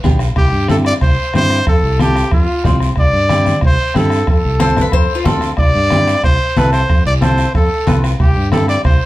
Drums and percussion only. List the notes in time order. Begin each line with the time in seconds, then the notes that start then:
0.04 bombo low, bombo rim, high conga, short guiro
0.19 bombo rim, short guiro
0.36 bombo low, bombo rim, long guiro
0.68 bombo rim, high conga, short guiro
0.85 bombo rim, short guiro
1.01 bombo low, bombo rim, long guiro
1.34 bombo rim, high conga, short guiro
1.50 bombo rim, short guiro
1.67 bombo low, bombo rim, long guiro
1.99 bombo rim, high conga, short guiro
2.16 bombo rim, short guiro
2.31 bombo low, bombo rim, long guiro
2.64 bombo low, bombo rim, high conga, low conga, short guiro
2.80 bombo rim, short guiro
2.96 bombo low, bombo rim, long guiro
3.29 bombo rim, high conga, short guiro
3.46 bombo rim, high conga, short guiro
3.61 bombo low, bombo rim, long guiro
3.94 bombo rim, high conga, short guiro
4.10 bombo rim, short guiro
4.27 bombo low, bombo rim, long guiro
4.60 bombo rim, high conga, short guiro
4.77 bombo rim, high conga, low conga, short guiro
4.92 bombo low, bombo rim, long guiro
5.24 bombo rim, high conga, low conga, short guiro
5.41 bombo rim, short guiro
5.57 bombo low, bombo rim, long guiro
5.90 bombo rim, high conga, short guiro
6.07 bombo rim, short guiro
6.23 bombo low, bombo rim, long guiro
6.57 bombo rim, high conga, short guiro
6.73 bombo rim, short guiro
6.89 bombo low, bombo rim, long guiro
7.22 bombo rim, high conga, short guiro
7.38 bombo rim, short guiro
7.55 bombo low, bombo rim, long guiro
7.87 bombo rim, high conga, low conga, short guiro
8.04 bombo rim, short guiro
8.20 bombo low, bombo rim, long guiro
8.52 bombo rim, high conga, short guiro
8.68 bombo rim, short guiro
8.85 bombo low, bombo rim, long guiro